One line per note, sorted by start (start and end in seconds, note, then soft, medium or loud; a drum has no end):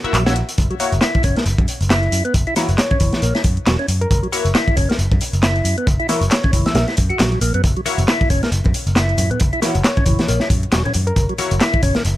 0.04 0.14 A#3 medium
0.04 0.14 E4 medium
0.04 0.14 F#4 medium
0.04 0.14 E5 loud
0.04 muted picked electric bass stroke soft
0.04 closed hi-hat soft
0.13 0.41 A#1 medium
0.13 0.24 F#3 loud
0.13 clap loud
0.13 closed hi-hat soft
0.13 closed hi-hat medium
0.26 0.36 A#3 medium
0.26 0.34 C#4 medium
0.26 0.36 E4 medium
0.26 0.36 F#4 medium
0.26 0.36 E5 medium
0.26 snare loud
0.26 closed hi-hat soft
0.26 closed hi-hat medium
0.36 closed hi-hat medium
0.49 closed hi-hat soft
0.49 closed hi-hat medium
0.58 0.66 F#1 loud
0.58 kick loud
0.58 closed hi-hat soft
0.58 closed hi-hat medium
0.70 0.75 F#3 medium
0.70 closed hi-hat soft
0.80 0.93 A#3 loud
0.80 0.93 E4 medium
0.80 0.93 F#4 medium
0.80 0.93 C#5 loud
0.80 closed hi-hat medium
0.80 open hi-hat medium
0.92 0.99 F#1 loud
0.92 closed hi-hat soft
1.01 1.23 E4 medium
1.01 snare loud
1.01 clap loud
1.01 closed hi-hat soft
1.01 closed hi-hat medium
1.15 kick medium
1.15 closed hi-hat soft
1.23 1.32 F#1 medium
1.23 1.36 C#4 loud
1.23 kick loud
1.23 closed hi-hat medium
1.23 open hi-hat medium
1.36 1.44 A#3 medium
1.36 snare medium
1.36 closed hi-hat soft
1.46 1.54 F#1 loud
1.46 closed hi-hat soft
1.46 closed hi-hat medium
1.58 1.65 F#2 medium
1.58 kick loud
1.58 closed hi-hat soft
1.68 closed hi-hat medium
1.68 open hi-hat medium
1.81 2.07 F#1 loud
1.81 closed hi-hat soft
1.90 2.24 E4 medium
1.90 snare loud
1.90 clap loud
1.90 closed hi-hat medium
1.90 closed hi-hat soft
2.03 closed hi-hat soft
2.12 2.20 F#2 medium
2.12 closed hi-hat medium
2.12 open hi-hat medium
2.25 2.34 B3 medium
2.25 closed hi-hat soft
2.34 2.43 F#1 loud
2.34 kick loud
2.34 closed hi-hat soft
2.34 closed hi-hat medium
2.47 2.54 E4 medium
2.47 closed hi-hat soft
2.56 2.68 E3 medium
2.56 2.69 A#3 medium
2.56 2.69 E4 medium
2.56 2.69 F#4 medium
2.56 2.69 C#5 medium
2.56 snare medium
2.56 closed hi-hat medium
2.56 open hi-hat medium
2.69 2.75 F#1 loud
2.69 closed hi-hat soft
2.78 3.41 C#5 loud
2.78 snare loud
2.78 clap loud
2.78 closed hi-hat soft
2.78 closed hi-hat medium
2.91 2.98 C#4 medium
2.91 kick medium
2.91 closed hi-hat soft
3.00 3.09 F#1 medium
3.00 3.21 E3 medium
3.00 kick medium
3.00 closed hi-hat medium
3.00 open hi-hat medium
3.13 snare medium
3.13 closed hi-hat soft
3.22 3.31 A#1 medium
3.22 3.34 A#3 loud
3.22 closed hi-hat soft
3.22 closed hi-hat medium
3.35 3.42 E4 medium
3.35 snare soft
3.35 closed hi-hat soft
3.44 3.57 F#2 loud
3.44 kick loud
3.44 closed hi-hat medium
3.44 open hi-hat medium
3.57 muted picked electric bass stroke soft
3.57 closed hi-hat soft
3.66 3.75 E1 medium
3.66 3.77 F#3 loud
3.66 snare loud
3.66 clap loud
3.66 closed hi-hat soft
3.66 closed hi-hat medium
3.79 3.87 C#4 medium
3.79 closed hi-hat soft
3.88 4.04 F#2 medium
3.88 closed hi-hat medium
3.88 open hi-hat medium
4.01 4.07 A#4 loud
4.01 closed hi-hat soft
4.11 4.19 F#1 loud
4.11 kick loud
4.11 closed hi-hat soft
4.11 closed hi-hat medium
4.23 4.28 F#3 medium
4.23 closed hi-hat soft
4.32 4.46 A#3 loud
4.32 4.46 E4 medium
4.32 4.46 F#4 medium
4.32 4.46 C#5 loud
4.32 closed hi-hat medium
4.32 open hi-hat medium
4.45 4.51 F#1 loud
4.45 closed hi-hat soft
4.54 4.76 E4 medium
4.54 snare loud
4.54 clap loud
4.54 closed hi-hat soft
4.54 closed hi-hat medium
4.68 kick medium
4.68 closed hi-hat soft
4.77 4.85 F#1 medium
4.77 4.89 C#4 loud
4.77 kick loud
4.77 closed hi-hat medium
4.77 open hi-hat medium
4.89 4.97 A#3 medium
4.89 snare medium
4.89 closed hi-hat soft
4.99 5.07 F#1 loud
4.99 closed hi-hat soft
4.99 closed hi-hat medium
5.11 5.18 F#2 medium
5.11 kick loud
5.11 closed hi-hat soft
5.21 closed hi-hat medium
5.21 open hi-hat medium
5.33 5.60 F#1 loud
5.33 closed hi-hat soft
5.43 5.77 E4 medium
5.43 snare loud
5.43 clap loud
5.43 closed hi-hat soft
5.43 closed hi-hat medium
5.56 closed hi-hat soft
5.65 5.73 F#2 medium
5.65 closed hi-hat medium
5.65 open hi-hat medium
5.78 5.87 B3 medium
5.78 closed hi-hat soft
5.87 5.96 F#1 loud
5.87 kick loud
5.87 closed hi-hat soft
5.87 closed hi-hat medium
6.00 6.07 E4 medium
6.00 closed hi-hat soft
6.09 6.21 E3 medium
6.09 6.22 A#3 medium
6.09 6.22 E4 medium
6.09 6.22 F#4 medium
6.09 6.22 C#5 medium
6.09 snare soft
6.09 closed hi-hat medium
6.09 open hi-hat medium
6.21 6.28 F#1 loud
6.21 closed hi-hat soft
6.31 6.65 C#5 medium
6.31 snare loud
6.31 clap loud
6.31 closed hi-hat soft
6.31 closed hi-hat medium
6.44 6.51 C#4 medium
6.44 kick medium
6.44 closed hi-hat soft
6.53 6.62 F#1 medium
6.53 6.75 E3 medium
6.53 kick medium
6.53 closed hi-hat medium
6.53 open hi-hat medium
6.66 6.72 E5 medium
6.66 snare medium
6.66 closed hi-hat soft
6.75 6.83 A#1 medium
6.75 6.87 A#3 medium
6.75 6.84 E5 medium
6.75 snare loud
6.75 closed hi-hat soft
6.75 closed hi-hat medium
6.88 6.96 E4 medium
6.88 snare soft
6.88 closed hi-hat soft
6.97 7.10 F#2 loud
6.97 kick medium
6.97 closed hi-hat medium
6.97 open hi-hat medium
7.10 7.19 F#4 medium
7.10 muted picked electric bass stroke soft
7.10 closed hi-hat soft
7.19 7.35 A#1 medium
7.19 7.30 F#3 medium
7.19 snare loud
7.19 clap loud
7.19 closed hi-hat soft
7.19 closed hi-hat medium
7.32 7.39 F#3 loud
7.32 closed hi-hat soft
7.41 7.50 A#1 medium
7.41 7.53 A#3 medium
7.41 closed hi-hat medium
7.41 open hi-hat medium
7.54 7.60 F#2 medium
7.54 7.62 B3 medium
7.54 closed hi-hat soft
7.64 7.72 F#1 loud
7.64 kick loud
7.64 closed hi-hat soft
7.64 closed hi-hat medium
7.77 7.81 F#3 medium
7.77 closed hi-hat soft
7.86 7.99 A#3 loud
7.86 7.99 E4 medium
7.86 7.99 F#4 medium
7.86 7.99 C#5 loud
7.86 closed hi-hat medium
7.86 open hi-hat medium
7.86 muted conga medium
7.98 8.04 F#1 loud
7.98 closed hi-hat soft
7.98 high conga medium
8.08 8.29 E4 medium
8.08 snare loud
8.08 clap loud
8.08 closed hi-hat soft
8.08 closed hi-hat medium
8.08 muted conga medium
8.21 kick loud
8.21 closed hi-hat soft
8.30 8.38 F#1 medium
8.30 8.42 C#4 loud
8.30 kick loud
8.30 closed hi-hat medium
8.30 open hi-hat medium
8.30 low conga medium
8.43 8.50 A#3 medium
8.43 snare medium
8.43 closed hi-hat soft
8.43 muted conga medium
8.52 8.60 F#1 loud
8.52 closed hi-hat medium
8.52 closed hi-hat soft
8.64 8.71 F#2 medium
8.64 kick medium
8.64 closed hi-hat soft
8.64 muted conga medium
8.64 high conga medium
8.74 closed hi-hat medium
8.74 open hi-hat medium
8.87 9.13 F#1 loud
8.87 closed hi-hat soft
8.95 9.30 E4 medium
8.95 snare loud
8.95 clap loud
8.95 closed hi-hat soft
8.95 closed hi-hat medium
8.95 muted conga medium
9.09 closed hi-hat soft
9.17 9.26 F#2 medium
9.17 closed hi-hat medium
9.17 open hi-hat medium
9.17 muted conga medium
9.17 high conga medium
9.17 low conga medium
9.30 9.40 B3 medium
9.30 closed hi-hat soft
9.30 low conga loud
9.40 9.49 F#1 loud
9.40 kick loud
9.40 closed hi-hat medium
9.40 closed hi-hat soft
9.53 9.60 E4 medium
9.53 closed hi-hat soft
9.53 muted conga medium
9.62 9.74 E3 medium
9.62 9.75 A#3 medium
9.62 9.75 E4 medium
9.62 9.75 F#4 medium
9.62 9.75 C#5 medium
9.62 snare medium
9.62 closed hi-hat medium
9.62 open hi-hat medium
9.75 9.81 F#1 loud
9.75 closed hi-hat soft
9.75 muted conga medium
9.75 high conga medium
9.84 10.47 C#5 loud
9.84 snare loud
9.84 clap loud
9.84 closed hi-hat medium
9.84 closed hi-hat soft
9.97 10.05 C#4 medium
9.97 kick loud
9.97 closed hi-hat soft
10.06 10.15 F#1 medium
10.06 10.28 E3 medium
10.06 kick medium
10.06 closed hi-hat medium
10.06 open hi-hat medium
10.06 muted conga soft
10.06 low conga medium
10.19 snare medium
10.19 closed hi-hat soft
10.28 10.37 A#1 medium
10.28 10.40 A#3 loud
10.28 closed hi-hat soft
10.28 closed hi-hat medium
10.28 muted conga medium
10.40 10.49 E4 medium
10.40 snare soft
10.40 closed hi-hat soft
10.40 high conga medium
10.50 10.63 F#2 medium
10.50 kick medium
10.50 closed hi-hat medium
10.50 open hi-hat medium
10.50 low conga medium
10.63 muted picked electric bass stroke soft
10.63 closed hi-hat soft
10.63 muted conga soft
10.72 10.81 E1 medium
10.72 10.83 F#3 loud
10.72 snare loud
10.72 clap loud
10.72 closed hi-hat loud
10.72 closed hi-hat soft
10.85 10.93 C#4 medium
10.85 closed hi-hat soft
10.85 muted conga medium
10.85 low conga medium
10.94 11.10 F#2 medium
10.94 closed hi-hat medium
10.94 open hi-hat medium
10.94 high conga loud
11.07 11.13 A#4 loud
11.07 closed hi-hat soft
11.16 11.25 F#1 loud
11.16 11.24 A#4 medium
11.16 kick loud
11.16 closed hi-hat medium
11.16 closed hi-hat soft
11.16 muted conga medium
11.29 11.34 F#3 medium
11.29 closed hi-hat soft
11.38 11.52 A#3 loud
11.38 11.52 E4 medium
11.38 11.52 F#4 medium
11.38 11.52 C#5 loud
11.38 closed hi-hat medium
11.38 open hi-hat medium
11.38 muted conga medium
11.51 11.58 F#1 loud
11.51 closed hi-hat soft
11.51 high conga medium
11.60 11.82 E4 medium
11.60 snare loud
11.60 clap loud
11.60 closed hi-hat soft
11.60 closed hi-hat medium
11.73 kick loud
11.73 closed hi-hat soft
11.73 muted conga medium
11.83 11.91 F#1 medium
11.83 11.95 C#4 loud
11.83 kick medium
11.83 closed hi-hat medium
11.83 open hi-hat medium
11.83 low conga medium
11.95 12.03 A#3 medium
11.95 snare medium
11.95 closed hi-hat soft
11.95 muted conga medium
12.05 12.13 F#1 loud
12.05 closed hi-hat soft
12.05 closed hi-hat medium